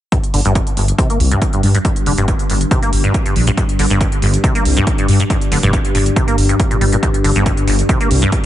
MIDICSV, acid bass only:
0, 0, Header, 1, 2, 480
1, 0, Start_track
1, 0, Key_signature, -2, "minor"
1, 0, Tempo, 431655
1, 136, Time_signature, 4, 2, 24, 8
1, 9404, End_track
2, 0, Start_track
2, 0, Title_t, "Acid bass"
2, 0, Program_c, 0, 38
2, 136, Note_on_c, 0, 43, 82
2, 205, Note_off_c, 0, 43, 0
2, 377, Note_on_c, 0, 50, 75
2, 446, Note_off_c, 0, 50, 0
2, 502, Note_on_c, 0, 43, 97
2, 596, Note_off_c, 0, 43, 0
2, 857, Note_on_c, 0, 31, 72
2, 898, Note_off_c, 0, 31, 0
2, 1098, Note_on_c, 0, 48, 84
2, 1201, Note_off_c, 0, 48, 0
2, 1223, Note_on_c, 0, 58, 71
2, 1317, Note_off_c, 0, 58, 0
2, 1462, Note_on_c, 0, 43, 98
2, 1556, Note_off_c, 0, 43, 0
2, 1702, Note_on_c, 0, 43, 77
2, 1796, Note_off_c, 0, 43, 0
2, 1942, Note_on_c, 0, 43, 97
2, 1980, Note_off_c, 0, 43, 0
2, 2057, Note_on_c, 0, 43, 80
2, 2126, Note_off_c, 0, 43, 0
2, 2297, Note_on_c, 0, 50, 74
2, 2366, Note_off_c, 0, 50, 0
2, 2422, Note_on_c, 0, 43, 99
2, 2516, Note_off_c, 0, 43, 0
2, 2536, Note_on_c, 0, 43, 82
2, 2605, Note_off_c, 0, 43, 0
2, 2776, Note_on_c, 0, 31, 76
2, 2817, Note_off_c, 0, 31, 0
2, 3016, Note_on_c, 0, 48, 83
2, 3120, Note_off_c, 0, 48, 0
2, 3141, Note_on_c, 0, 58, 73
2, 3236, Note_off_c, 0, 58, 0
2, 3380, Note_on_c, 0, 43, 100
2, 3475, Note_off_c, 0, 43, 0
2, 3621, Note_on_c, 0, 43, 77
2, 3716, Note_off_c, 0, 43, 0
2, 3861, Note_on_c, 0, 43, 104
2, 3899, Note_off_c, 0, 43, 0
2, 3975, Note_on_c, 0, 43, 79
2, 4045, Note_off_c, 0, 43, 0
2, 4215, Note_on_c, 0, 50, 72
2, 4285, Note_off_c, 0, 50, 0
2, 4341, Note_on_c, 0, 43, 97
2, 4436, Note_off_c, 0, 43, 0
2, 4454, Note_on_c, 0, 43, 80
2, 4525, Note_off_c, 0, 43, 0
2, 4696, Note_on_c, 0, 31, 76
2, 4737, Note_off_c, 0, 31, 0
2, 4936, Note_on_c, 0, 48, 82
2, 5040, Note_off_c, 0, 48, 0
2, 5060, Note_on_c, 0, 58, 73
2, 5155, Note_off_c, 0, 58, 0
2, 5301, Note_on_c, 0, 43, 101
2, 5396, Note_off_c, 0, 43, 0
2, 5541, Note_on_c, 0, 43, 77
2, 5635, Note_off_c, 0, 43, 0
2, 5780, Note_on_c, 0, 43, 103
2, 5819, Note_off_c, 0, 43, 0
2, 5895, Note_on_c, 0, 43, 81
2, 5965, Note_off_c, 0, 43, 0
2, 6134, Note_on_c, 0, 50, 76
2, 6204, Note_off_c, 0, 50, 0
2, 6259, Note_on_c, 0, 43, 101
2, 6355, Note_off_c, 0, 43, 0
2, 6612, Note_on_c, 0, 31, 80
2, 6656, Note_off_c, 0, 31, 0
2, 6854, Note_on_c, 0, 48, 79
2, 6959, Note_off_c, 0, 48, 0
2, 6978, Note_on_c, 0, 58, 71
2, 7074, Note_off_c, 0, 58, 0
2, 7220, Note_on_c, 0, 43, 78
2, 7284, Note_off_c, 0, 43, 0
2, 7458, Note_on_c, 0, 46, 72
2, 7523, Note_off_c, 0, 46, 0
2, 7573, Note_on_c, 0, 55, 80
2, 7616, Note_off_c, 0, 55, 0
2, 7700, Note_on_c, 0, 46, 80
2, 7739, Note_off_c, 0, 46, 0
2, 7815, Note_on_c, 0, 43, 81
2, 7885, Note_off_c, 0, 43, 0
2, 8055, Note_on_c, 0, 50, 78
2, 8125, Note_off_c, 0, 50, 0
2, 8180, Note_on_c, 0, 43, 99
2, 8275, Note_off_c, 0, 43, 0
2, 8296, Note_on_c, 0, 43, 80
2, 8365, Note_off_c, 0, 43, 0
2, 8535, Note_on_c, 0, 31, 77
2, 8577, Note_off_c, 0, 31, 0
2, 8776, Note_on_c, 0, 48, 82
2, 8880, Note_off_c, 0, 48, 0
2, 8902, Note_on_c, 0, 58, 71
2, 8996, Note_off_c, 0, 58, 0
2, 9142, Note_on_c, 0, 43, 101
2, 9236, Note_off_c, 0, 43, 0
2, 9404, End_track
0, 0, End_of_file